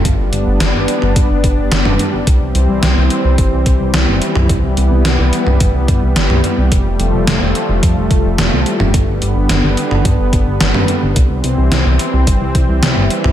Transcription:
<<
  \new Staff \with { instrumentName = "Analog synth pad" } { \time 4/4 \key c \major \tempo 4 = 108 << { <b d'>1 | c'1 | b1 | a1 |
b1 | <g c'>1 | } \\ { g1 | e1~ | e1 | f1 |
d1 | e1 | } >> }
  \new Staff \with { instrumentName = "Analog synth bass" } { \clef bass \time 4/4 \key c \major g,,16 g,,16 g,,16 g,,16 g,,16 g,,16 r16 g,,16 g,16 g,,16 g,,16 g,,16 g,,16 f,,16 r16 g,,16 | c,16 c,16 c,16 c,16 c,16 c,16 r16 c,16 g,,16 c,16 c,16 c,16 c,16 g,,16 r16 c,16 | c,16 c,16 c,16 c,16 c,16 c,16 r16 c,16 g,,16 c,16 g,,16 c,16 g,,16 c,16 r16 c,16 | f,,16 f,,16 f,,16 f,,16 f,,16 f,,16 r16 f,,16 f,16 f,,16 f,,16 f,,16 f,,16 c,16 r16 f,,16 |
g,,16 g,,16 g,,16 g,,16 g,,16 g,,16 r16 g,,16 g,16 g,,16 g,,16 g,,16 g,,16 f,,16 r16 g,,16 | c,16 c,16 c,16 c,16 c,16 c,16 r16 c,16 g,,16 c,16 c,16 c,16 c,16 g,,16 r16 c,16 | }
  \new DrumStaff \with { instrumentName = "Drums" } \drummode { \time 4/4 <hh bd>8 hh8 <hh sn>8 hh16 toml16 <hh bd>8 <hh bd>8 <hh sn>16 toml16 hh8 | <hh bd>8 hh8 <hh sn>8 hh8 <hh bd>8 <hh bd>8 <hh sn>8 hh16 toml16 | <hh bd>8 hh8 <hh sn>8 hh16 toml16 <hh bd>8 <hh bd>8 <hh sn>16 toml16 hh8 | <hh bd>8 hh8 <hh sn>8 hh8 <hh bd>8 <hh bd>8 <hh sn>8 hh16 toml16 |
<hh bd>8 hh8 <hh sn>8 hh16 toml16 <hh bd>8 <hh bd>8 <hh sn>16 toml16 hh8 | <hh bd>8 hh8 <hh sn>8 hh8 <hh bd>8 <hh bd>8 <hh sn>8 hh16 toml16 | }
>>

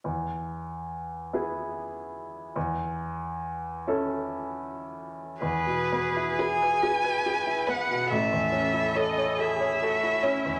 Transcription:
<<
  \new Staff \with { instrumentName = "Violin" } { \time 6/8 \key e \major \tempo 4. = 47 r2. | r2. | b'4 gis''4. fis''8 | e''4 dis''8 e''4. | }
  \new Staff \with { instrumentName = "Violin" } { \time 6/8 \key e \major r2. | r2. | r4 b'8 r4 b'8 | r4 cis''8 r4 cis''8 | }
  \new Staff \with { instrumentName = "Cello" } { \time 6/8 \key e \major r2. | r2. | gis'4. b'4. | a'4. gis'8 fis'8 e'8 | }
  \new Staff \with { instrumentName = "Grand piano" } { \time 6/8 \key e \major e,4. <b e' gis'>4. | e,4. <cis' e' a'>4. | e,16 b,16 b16 e'16 gis'16 b'16 gis'16 b'16 gis'16 e'16 b16 b,16 | a,,16 e,16 cis'16 e'16 a'16 cis''16 a'16 cis''16 a'16 e'16 cis'16 e,16 | }
>>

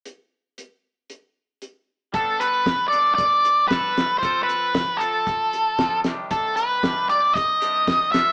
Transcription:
<<
  \new Staff \with { instrumentName = "Lead electric guitar" } { \time 4/4 \key g \mixolydian \tempo 4 = 115 r1 | a'8 b'4 d''8 d''4 b'4 | c''8 b'4 a'2 r8 | a'8 b'4 d''8 ees''4. e''8 | }
  \new Staff \with { instrumentName = "Clean electric guitar" } { \time 4/4 \key g \mixolydian r1 | <g b d' a'>4. <g b d' a'>4. <g b d' a'>4 | <f c' f' a'>4. <f c' f' a'>4. <f c' f' a'>8 <c ees g d' g'>8~ | <c ees g d' g'>4 <c ees g d' g'>4. <c ees g d' g'>4 <d a d' f'>8 | }
  \new DrumStaff \with { instrumentName = "Drums" } \drummode { \time 4/4 hh4 hh4 hh4 hh4 | <hh bd>8 hh8 <hh bd sn>8 hh8 <hh bd>8 hh8 <hh bd sn>8 <hh sn>8 | <hh bd>8 hh8 <hh bd sn>8 hh8 <hh bd>8 hh8 <hh bd sn>8 <hh sn>8 | <hh bd>8 hh8 <hh bd sn>8 hh8 <hh bd>8 hh8 <hh bd sn>8 <hh sn>8 | }
>>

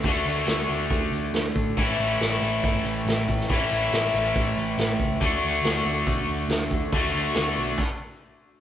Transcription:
<<
  \new Staff \with { instrumentName = "Overdriven electric guitar" } { \time 4/4 \key d \lydian \tempo 4 = 140 <d a d' fis'>1 | <a, e a cis' e'>1 | <a, e a cis' e'>1 | <d a d' fis'>1 |
<d a d' fis'>2 r2 | }
  \new Staff \with { instrumentName = "Picked electric bass" } { \clef bass \time 4/4 \key d \lydian d,8 d,8 d,8 d,8 d,8 d,8 d,8 a,8 | a,,8 a,,8 a,,8 a,,8 g,,8 a,,8 a,,4 | a,,8 a,,8 a,,8 a,,8 a,,8 a,,8 a,,8 cis,8 | d,8 d,8 d,8 d,8 b,,8 d,8 d,4 |
d,8 d,8 d,8 b,,8 r2 | }
  \new DrumStaff \with { instrumentName = "Drums" } \drummode { \time 4/4 <hho bd>8 hho8 <hho sn>8 hho8 <hho bd>8 hho8 <hho sn>8 <hho bd>8 | <hho bd>8 hho8 <hho sn>8 hho8 <hho bd>8 hho8 <hho sn>8 <hho bd>16 sn16 | <hho bd>8 hho8 <hho sn>8 hho8 <hho bd>8 hho8 <hho sn>8 <hho bd>8 | <hho bd>8 hho8 <hho sn>8 hho8 <hho bd>8 hho8 <hho sn>8 <hho bd>8 |
<hho bd>8 hho8 <hho sn>8 hho8 <cymc bd>4 r4 | }
>>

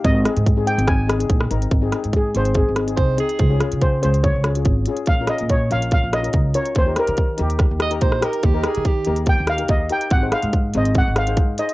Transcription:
<<
  \new Staff \with { instrumentName = "Steel pan" } { \time 4/4 \key aes \major \tempo 4 = 143 ees''4. g''8 aes''4. r8 | r4 aes'8 c''8 aes'4. r8 | r4 c''8 c''8 des''4. r8 | f''8 ees''8 des''8 f''8 f''8 ees''4 des''8 |
c''8 bes'4 g'2~ g'8 | r2 g''8 f''8 ees''8 g''8 | ges''8 f''4 ees''8 ges''8 f''4 ees''8 | }
  \new Staff \with { instrumentName = "Alto saxophone" } { \time 4/4 \key aes \major r1 | r2. c''8 aes'8~ | aes'8. r2. r16 | r1 |
r2 r8 ees''8 c''8 bes'8 | g'8 aes'8 g'8. r2 r16 | r1 | }
  \new Staff \with { instrumentName = "Steel pan" } { \time 4/4 \key aes \major r8 <c' ees' aes'>8 r16 <c' ees' aes'>16 <c' ees' aes'>8 r8 <c' ees' aes'>16 <c' ees' aes'>8 r16 <c' ees' bes'>8 | r16 <c' ees' aes'>16 <c' ees' aes'>8 r8 <c' ees' aes'>8 r8 <c' ees' aes'>16 <c' ees' aes'>8 r16 <c' ees' aes'>8 | r16 <des' f' aes'>16 <des' f' aes'>8 r8 <des' f' aes'>8 r8 <des' f' aes'>16 <des' f' aes'>8 r16 <des' f' aes'>8 | r16 <des' f' bes'>16 <des' f' bes'>8 r8 <des' f' bes'>8 r8 <des' f' bes'>16 <des' f' bes'>8 r16 <des' f' bes'>8 |
r16 <ees' g' bes'>16 <ees' g' bes'>8 r8 <ees' g' bes'>8 r8 <ees' g' bes'>16 <ees' g' bes'>8 r16 <ees' g' bes'>8 | r16 <ees' g' bes'>16 <ees' g' bes'>8 r8 <ees' g' bes'>8 r8 <ees' g' bes'>16 <ees' g' bes'>8 r16 <ees' g' bes'>8 | r16 <ees' aes' c''>16 <ees' aes' c''>8 r8 <ees' aes' c''>8 r8 <ees' aes' c''>16 <ees' aes' c''>8 r16 <ees' aes' c''>8 | }
  \new Staff \with { instrumentName = "Upright bass" } { \clef bass \time 4/4 \key aes \major aes,,8 r16 aes,4 aes,,4~ aes,,16 bes,,8 aes,,8 | aes,,8 r16 aes,8. aes,,8. aes,,8. c,8 r8 | des,8 r16 des8. des,8. des,8. aes,,8 r8 | bes,,8 r16 bes,8. bes,,8. bes,,8. des,8 r8 |
ees,8 r16 ees8. ees,8. ees,8. bes,,8 r8 | ees,8 r16 ees8. ees,8. ees,8. ees,8 r8 | aes,,8 r16 aes,8. aes,,8. aes,,8. aes,8 r8 | }
  \new DrumStaff \with { instrumentName = "Drums" } \drummode { \time 4/4 <hh bd>8 <hh ss>16 hh16 <hh bd>8 hh16 hh16 <hh bd ss>8 <hh ss>16 hh16 <hh bd>16 ss16 hh16 hh16 | <hh bd>8 <hh ss>16 hh16 <hh bd>8 hh16 hh16 <hh bd>8 <hh ss>16 hh16 <hh bd>8 hh16 hh16 | <hh bd>8 <hh ss>16 hh16 <hh bd>8 hh16 hh16 <hh bd>8 <hh ss>16 hh16 <hh bd>8 hh16 hh16 | <hh bd>8 <hh ss>16 hh16 <hh bd>8 hh16 hh16 <hh bd>8 <hh ss>16 hh16 <hh bd>8 hh16 hh16 |
<hh bd>8 <hh ss>16 hh16 <hh bd>8 hh16 hh16 <hh bd ss>8 <hh ss>16 hh16 <hh bd>16 ss16 <hh ss>16 hh16 | <hh bd>8 <hh ss>16 hh16 <hh bd>8 hh16 hh16 <hh bd>8 <hh ss>16 hh16 <hh bd>8 hh16 hh16 | <hh bd>8 <hh ss>16 hh16 <hh bd>8 hh16 hh16 <hh bd>8 <hh ss>16 hh16 <hh bd>8 hh16 hh16 | }
>>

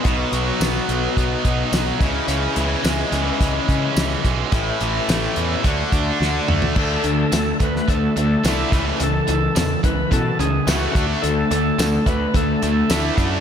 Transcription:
<<
  \new Staff \with { instrumentName = "Tonewheel organ" } { \time 4/4 \key d \lydian \tempo 4 = 107 r1 | r1 | r1 | a'4. b'8 a'8 a'8 e'8. r16 |
a'4. b'8 a'8 gis'8 fis'8. r16 | a'4. b'8 a'8 a'8 e'8. r16 | }
  \new Staff \with { instrumentName = "Distorted electric guitar" } { \clef bass \time 4/4 \key d \lydian <b, fis b dis' fis'>2.~ <b, fis b dis' fis'>8 <cis e gis cis' e'>8~ | <cis e gis cis' e'>2.~ <cis e gis cis' e'>8 r8 | <a, e a cis' e'>2 <d a d' fis'>2 | <d a d'>8 <d a>8 <d a>8 <d a>8 <d a>8 <d a>8 <d a d'>8 <cis e a>8 |
<cis e>8 <cis e>8 <cis e>8 <cis e>8 <cis e>8 <cis e>8 <cis e a>8 <d a d'>8 | <d a>8 <d a>8 <d a>8 <d a>8 <d a>8 <d a>8 <d a d'>8 <d a d'>8 | }
  \new Staff \with { instrumentName = "Distorted electric guitar" } { \clef bass \time 4/4 \key d \lydian b,8 fis8 b8 fis8 b8 dis'8 fis8 cis8 | cis8 e8 gis8 e8 gis8 cis'8 e8 gis8 | a,8 e8 a8 e8 d8 d'8 d8 a8 | <d a d'>8 <d a>8 <d a>8 <d a>8 <d a>8 <d a>8 <d a d'>8 <cis e a>8 |
<cis e>8 <cis e>8 <cis e>8 <cis e>8 <cis e>8 <cis e>8 <cis e a>8 <d a d'>8 | <d a>8 <d a>8 <d a>8 <d a>8 <d a>8 <d a>8 <d a d'>8 <d a d'>8 | }
  \new Staff \with { instrumentName = "Picked electric bass" } { \clef bass \time 4/4 \key d \lydian b,,8 b,,8 b,,8 b,,8 b,,8 b,,8 b,,8 cis,8 | cis,8 cis,8 cis,8 cis,8 cis,8 cis8 cis,8 b,,8 | a,,8 a,,8 a,,8 e,8 d,8 d,8 d,8 d,8 | d,8 d,8 d,8 d,8 d,8 d,8 c,8 cis,8 |
cis,8 cis,8 e,8 cis,8 b,8 cis,8 cis,8 d,8 | d,8 d,8 d,8 d,8 d,8 d,8 d,8 fis,8 | }
  \new DrumStaff \with { instrumentName = "Drums" } \drummode { \time 4/4 <hh bd>8 hh8 <hh sn tamb>8 hh8 <hh bd>8 <hh bd>8 <hh sn tamb>8 <hh bd>8 | hh8 hh8 <hh sn tamb>8 hh8 <hh bd>8 <hh bd>8 <hh sn tamb>8 <hh bd>8 | <hh bd>8 hh8 <hh sn tamb>8 hh8 <hh bd>8 <hh bd>8 sn8 toml16 tomfh16 | <cymc bd>8 hh8 <hh sn tamb>8 <hh bd>16 sn16 <hh bd>8 hh8 <hh sn tamb>8 <hh bd>8 |
hh8 hh8 <hh sn tamb>8 <hh bd>8 <hh bd>8 hh8 <hh sn tamb>8 <hh bd>8 | hh8 hh8 <hh sn tamb>8 <hh bd>8 <hh bd>8 hh8 <hh sn tamb>8 <hh bd>8 | }
>>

